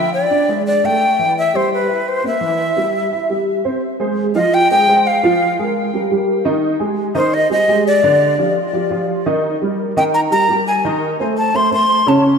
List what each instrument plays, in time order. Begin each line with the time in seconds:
Already playing: upright piano F3 F4, flute E5
0.14 flute D5
0.30 upright piano D4 D5
0.48 upright piano G#3 G#4
0.67 flute D5
0.84 upright piano A3 A4, flute G5
1.19 upright piano E3 E4
1.38 flute E5
1.54 upright piano G3 G4, flute C5
1.74 flute B4
1.88 upright piano E4 E5
2.08 flute C5
2.24 upright piano A#3 A#4, flute E5
2.40 upright piano E3 E4
2.76 upright piano G3 G4
3.11 upright piano E4 E5
3.29 upright piano G3 G4
3.65 upright piano C4 C5
3.99 upright piano G#3 G#4 C5
4.35 upright piano F3 F4 F5, flute D#5
4.54 flute G5
4.71 upright piano G#3 G#4 C5, flute G5
4.88 upright piano G#3 G#4 C5
5.07 flute F5
5.23 upright piano F3 F4 F5
5.59 upright piano G#3 G#4 A#4
5.94 upright piano G3 G4 A#4
6.11 upright piano G3 G4 A#4
6.45 upright piano D#3 D#4 D#5
6.80 upright piano G#3 G4 G#4
7.14 upright piano D#3 D#4 D#5, flute C5
7.34 flute D#5
7.50 upright piano G3 G4 G#4, flute D#5
7.68 upright piano G#3 G4 G#4
7.87 flute D5
8.03 upright piano D3 D4 D5
8.38 upright piano F3 F4 G4
8.73 upright piano F3 F4 G4
8.90 upright piano F3 F4 G4
9.26 upright piano D#3 D#4 D#5
9.61 upright piano G3 G4 A#4
9.96 upright piano D#3 D#4 D#5, flute G5
10.14 flute A#5
10.31 upright piano G3 G4 A#4, flute A#5
10.49 upright piano G3 G4 A#4
10.67 flute G#5
10.84 upright piano D#3 D#4 D#5
11.20 upright piano A3 A4 C5
11.38 flute A5
11.54 upright piano A3 A4 C5, flute C6
11.71 upright piano A3 A4 C5, flute C6
12.06 upright piano C#3 C#4 C#5, flute A5